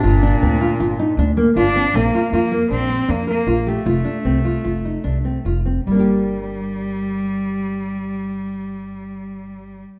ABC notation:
X:1
M:5/4
L:1/8
Q:1/4=150
K:Gm
V:1 name="Nylon-string guitar"
F D C F F E D B, F C | C F F B, D C D B F G | F D C F F E D C F C | [G,B,DG]8- [G,B,DG]2- |
[G,B,DG]8- [G,B,DG]2 |]
V:2 name="Clarinet"
D6- D z B,2 | z8 z2 | z8 z2 | z8 z2 |
z8 z2 |]
V:3 name="Cello"
B,,8 D2 | B,2 B,2 C2 B, B,2 A,- | A,8 z2 | G,8- G,2- |
G,8- G,2 |]
V:4 name="Upright bass" clef=bass
G,,,2 D,,2 G,,, z D,,2 G,,,2 | B,,, z F,,2 B,,,2 F,,2 B,,,2 | F,,, z C,,2 F,,,2 C,,2 F,,,2 | G,,,8- G,,,2- |
G,,,8- G,,,2 |]